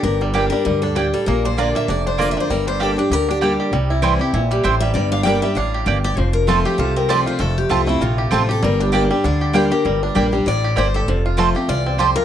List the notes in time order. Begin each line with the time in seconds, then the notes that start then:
Already playing: D4 G4
0.03 G1 G2 D4 A#4
0.21 G3 D4
0.34 G3 A#3 D4 G4 D5 G5
0.50 G3 D4 G4 A#4
0.65 D2 G2 D3 A#4
0.82 D4 A4
0.95 A2 A#3 D4 G4 D5 G5
1.14 G3 A4
1.26 A#1 A#2 A#3 A#4
1.45 D4 C5
1.57 D3 A#3 D4 F4 D5 A#5
1.75 A#3 E5
1.88 F1 F2 D4 D5
2.06 D4 C5
2.18 D3 A#3 D4 F4 D5 A#5
2.31 E5
2.37 D4 C5
2.50 G1 G2 G3 A#4
2.67 D4 C5
2.80 G3 A#3 D4 G4 A4 D5 G5
2.97 D4 G4
3.10 D2 D3 G4 A#4
3.29 D4 G4
3.41 G3 A#3 D4 G4 D5 G5
3.60 G4
3.72 C2 C3 G3
3.90 E4
4.02 E3 G3 C4 E4 C5 G5
4.19 C4 E4 G4
4.33 A#1 A#2 E4
4.51 G3 G4
4.63 A1 A2 C4 E4 C5 G5
4.80 G3 E5
4.94 G1 G2 G3 D5
5.12 D4 F5
5.23 G3 A#3 D4 G4 D5 G5
5.42 G3 D4 G4 E5
5.55 A1 A2 D4 F5
5.74 G4
5.86 G1 G2 A#3 D4 G4 D5 G5
6.04 G4 D5
6.17 F1 F2 F3 C5
6.33 A#4
6.47 F3 A3 C4 F4 A4 C5 A5
6.65 G4
6.78 C2 C3 F4 A4
6.96 C4 A#4
7.09 F3 A3 C4 F4 G4 C5 D5 A5
7.26 F4 C5
7.39 F1 F2 A3 A4
7.58 G4
7.69 C2 F3 A3 C4 F4 C5 A5
7.86 A3 C4 E4 F4
8.01 A#1 C3 F4
8.18 G4
8.31 A1 F3 A3 C4 F4 C5 A5
8.49 C4 F4 G4 A4
8.62 G1 G2 G3 A#4
8.80 D4 G4
8.92 G3 A#3 D4 G4 D5 G5
9.11 G3 D4 G4
9.24 D2 D3 D4 D5
9.41 G4
9.53 G3 A#3 D4 G4 C5 D5 G5
9.71 D4 G4 A#4
9.85 G1 G2 G3
10.03 D4
10.15 A#1 G3 A#3 D4 G4 D5 G5
10.32 G3 D4 G4
10.46 A1 A2 D4 D5
10.64 G4
10.76 G1 G2 A#3 D4 G4 C5 D5 G5
10.94 G4 A4
11.08 F1 F2 F3
11.26 F4
11.37 F3 A3 C4 F4 C5 A5
11.55 C4 F4 G4
11.68 C2 E2 F4 D5
11.86 C4
11.98 F2 C4 F4 G4 C5 A5
12.16 F4 A#4